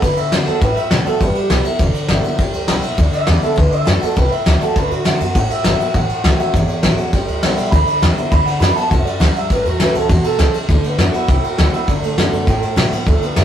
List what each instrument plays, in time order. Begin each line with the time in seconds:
0.02 upright bass D2, steel-string acoustic guitar D3, clean electric guitar B4, kick, ride
0.17 upright bass A2, clean electric guitar E5, ride
0.32 upright bass F#2, steel-string acoustic guitar D3 A3 B3 F#4, clean electric guitar D5, snare, ride
0.46 upright bass F#2, steel-string acoustic guitar B3 F#4, clean electric guitar A4, ride
0.61 upright bass A2, steel-string acoustic guitar A2, clean electric guitar B4, kick, ride
0.76 clean electric guitar E5, muted upright bass stroke, ride
0.91 upright bass B2, steel-string acoustic guitar D3 A3 B3 F#4, clean electric guitar D5, snare, ride
1.05 steel-string acoustic guitar B3 F#4, clean electric guitar A4, muted upright bass stroke, ride
1.21 upright bass G1, steel-string acoustic guitar G3, clean electric guitar B4, kick, ride
1.35 clean electric guitar G4, muted upright bass stroke, ride
1.50 upright bass B1, steel-string acoustic guitar G3 B3 E4, snare, ride
1.64 steel-string acoustic guitar B3 E4, muted upright bass stroke, ride
1.79 upright bass E1, steel-string acoustic guitar D3, kick, ride
1.94 muted upright bass stroke, ride
2.08 upright bass G1, steel-string acoustic guitar G3 B3, snare, ride
2.13 steel-string acoustic guitar E4
2.24 steel-string acoustic guitar B3 E4, ride
2.38 upright bass G1, steel-string acoustic guitar G3, kick, ride
2.53 upright bass D2, ride
2.68 upright bass B1, steel-string acoustic guitar G3 B3 E4, snare, ride
2.83 upright bass B1, steel-string acoustic guitar B3 E4, ride
2.98 upright bass D2, steel-string acoustic guitar D3, kick, ride
3.13 clean electric guitar E5, muted upright bass stroke, ride
3.27 upright bass E2, steel-string acoustic guitar G3 B3 E4, clean electric guitar D5, snare, ride
3.42 steel-string acoustic guitar B3 E4, clean electric guitar A4, muted upright bass stroke, ride
3.56 upright bass D2, steel-string acoustic guitar D3, clean electric guitar B4, kick, ride
3.71 clean electric guitar E5, muted upright bass stroke, ride
3.85 upright bass F#2, steel-string acoustic guitar D3 A3 B3 F#4, clean electric guitar D5, snare, ride
4.01 steel-string acoustic guitar B3 F#4, clean electric guitar A4, muted upright bass stroke, ride
4.16 upright bass C2, steel-string acoustic guitar A2, clean electric guitar B4, kick, ride
4.31 clean electric guitar E5, ride
4.46 upright bass D2, steel-string acoustic guitar D3 A3 B3 F#4, clean electric guitar D5, snare, ride
4.61 steel-string acoustic guitar B3 F#4, clean electric guitar A4, ride
4.76 upright bass D2, steel-string acoustic guitar D3, clean electric guitar B4, kick, ride
4.91 upright bass A2, clean electric guitar F#4, ride
5.04 upright bass F#2, steel-string acoustic guitar D3 A3 B3 F#4, snare, ride
5.20 upright bass F#2, steel-string acoustic guitar B3 F#4, ride
5.35 steel-string acoustic guitar A2, upright bass A2, clean electric guitar F#5, kick, ride
5.49 clean electric guitar E5, muted upright bass stroke, ride
5.64 upright bass G1, steel-string acoustic guitar D3 A3 B3 F#4, snare, ride
5.80 steel-string acoustic guitar B3 F#4, ride
5.94 upright bass A1, steel-string acoustic guitar A2, clean electric guitar F#5, kick, ride
6.09 muted upright bass stroke, ride
6.24 upright bass C#2, steel-string acoustic guitar E3 A3 C#4 F#4, snare, ride
6.39 steel-string acoustic guitar C#4 F#4, clean electric guitar E5, ride
6.53 upright bass G1, steel-string acoustic guitar E2, clean electric guitar C#5, kick, ride
6.69 ride
6.83 upright bass A1, steel-string acoustic guitar E3 A3 C#4 F#4, snare, ride
6.98 steel-string acoustic guitar C#4 F#4, muted upright bass stroke, ride
7.13 upright bass G1, steel-string acoustic guitar G3, kick, ride
7.28 upright bass D2, ride
7.43 upright bass B1, steel-string acoustic guitar G3 B3 E4, snare, ride
7.57 upright bass B1, ride
7.71 upright bass D2, steel-string acoustic guitar D3, clean electric guitar B5, kick, ride
7.87 muted upright bass stroke, ride
8.02 upright bass E2, steel-string acoustic guitar G3 B3 E4, snare, ride
8.16 steel-string acoustic guitar B3 E4, muted upright bass stroke, ride
8.32 upright bass D2, steel-string acoustic guitar D3, clean electric guitar B5, kick, ride
8.46 clean electric guitar F#5, ride
8.60 upright bass F#2, steel-string acoustic guitar D3 A3 B3 F#4, clean electric guitar B5, snare, ride
8.76 steel-string acoustic guitar B3 F#4, clean electric guitar A5, muted upright bass stroke, ride
8.90 upright bass C2, steel-string acoustic guitar F#2, clean electric guitar F#5, kick, ride
9.05 clean electric guitar D5, muted upright bass stroke, ride
9.20 upright bass D2, steel-string acoustic guitar G2, clean electric guitar F#5, snare, ride
9.35 clean electric guitar E5, muted upright bass stroke, ride
9.50 upright bass A1, steel-string acoustic guitar A2, clean electric guitar B4, kick, ride
9.65 upright bass E2, clean electric guitar F#4, ride
9.80 upright bass C#2, steel-string acoustic guitar E3 A3 C#4 F#4, clean electric guitar B4, snare, ride
9.95 upright bass C#2, steel-string acoustic guitar C#4 F#4, clean electric guitar A4, ride
10.09 upright bass E2, steel-string acoustic guitar B2, clean electric guitar F#4, kick, ride
10.24 clean electric guitar A4, muted upright bass stroke, ride
10.39 upright bass C#2, steel-string acoustic guitar C#3, snare, ride
10.53 muted upright bass stroke, ride
10.69 upright bass D2, steel-string acoustic guitar D3, clean electric guitar A3, kick, ride
10.83 clean electric guitar B3, muted upright bass stroke, ride
10.98 upright bass F#2, steel-string acoustic guitar D3 A3 B3 F#4, clean electric guitar D4, snare, ride
11.14 steel-string acoustic guitar B3 F#4, clean electric guitar E4, muted upright bass stroke, ride
11.28 upright bass C2, steel-string acoustic guitar A2, kick, ride
11.44 clean electric guitar F#4, ride
11.58 upright bass D2, steel-string acoustic guitar D3 A3 B3 F#4, clean electric guitar E4, snare, ride
11.73 steel-string acoustic guitar B3 F#4, clean electric guitar E4, muted upright bass stroke, ride
11.88 upright bass D2, steel-string acoustic guitar D3, clean electric guitar D4, kick, ride
12.02 upright bass A2, clean electric guitar A3, ride
12.17 upright bass F#2, steel-string acoustic guitar D3 A3 B3 F#4, snare, ride
12.32 upright bass F#2, ride
12.47 upright bass A2, steel-string acoustic guitar A2, kick, ride
12.62 muted upright bass stroke, ride
12.76 upright bass B2, steel-string acoustic guitar D3 A3 B3 F#4, snare, ride
12.91 steel-string acoustic guitar B3 F#4, muted upright bass stroke, ride
13.07 upright bass D2, steel-string acoustic guitar D3, clean electric guitar A3, kick, ride
13.22 clean electric guitar B3, muted upright bass stroke, ride
13.36 upright bass F#2, steel-string acoustic guitar D3 A3 B3 F#4, clean electric guitar D4, snare, ride